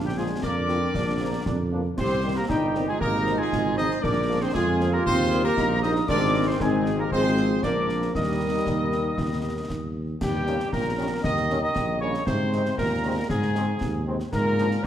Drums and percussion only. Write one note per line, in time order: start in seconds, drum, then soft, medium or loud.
0.43 concert bass drum medium
0.43 snare medium
0.69 snare medium
0.94 concert bass drum medium
0.94 snare medium
1.46 concert bass drum medium
1.46 snare medium
1.98 concert bass drum medium
1.98 snare medium
1.98 crash soft
2.50 concert bass drum medium
2.50 snare medium
2.75 snare medium
3.01 concert bass drum medium
3.27 snare medium
3.52 concert bass drum medium
3.52 snare medium
3.78 snare medium
3.91 snare medium
4.04 concert bass drum medium
4.04 snare medium
4.55 concert bass drum medium
4.55 snare medium
4.81 snare medium
5.06 concert bass drum medium
5.32 snare medium
5.57 concert bass drum medium
5.57 snare medium
5.83 snare medium
5.96 snare medium
6.09 concert bass drum medium
6.09 snare medium
6.09 crash soft
6.60 concert bass drum medium
6.60 snare medium
6.86 snare medium
7.12 concert bass drum medium
7.37 snare medium
7.63 concert bass drum medium
7.63 snare medium
7.89 snare medium
8.02 snare medium
8.15 concert bass drum medium
8.15 snare medium
8.67 concert bass drum medium
8.67 snare medium
8.92 snare medium
9.18 concert bass drum medium
9.18 snare medium
9.70 concert bass drum medium
9.70 snare medium
10.21 concert bass drum medium
10.21 snare medium
10.21 crash medium
10.47 snare medium
10.60 snare medium
10.73 concert bass drum medium
10.73 snare medium
11.24 concert bass drum medium
11.24 snare medium
11.37 snare medium
11.50 snare medium
11.76 concert bass drum medium
11.76 snare medium
12.14 snare medium
12.27 concert bass drum medium
12.27 snare medium
12.53 snare medium
12.65 snare medium
12.78 concert bass drum medium
12.78 snare medium
13.30 concert bass drum medium
13.30 snare medium
13.42 snare medium
13.55 snare medium
13.81 concert bass drum medium
13.81 snare medium
14.20 snare medium
14.33 concert bass drum medium
14.33 snare medium
14.33 crash soft
14.58 snare medium
14.71 snare medium